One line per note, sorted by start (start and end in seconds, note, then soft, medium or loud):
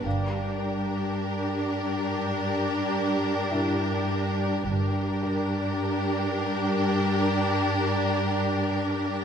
0.05 1.17 G1 soft
0.05 4.63 G2 soft
0.05 4.63 D4 soft
0.05 4.63 G4 soft
0.05 4.63 A#4 soft
0.05 3.48 F5 soft
3.51 6.93 E4 soft
3.51 6.93 E5 soft
4.66 5.78 G1 soft
4.66 9.24 G2 soft
4.66 9.24 D4 soft
4.66 9.24 G4 soft
4.66 9.24 A#4 soft
5.23 8.66 A#4 soft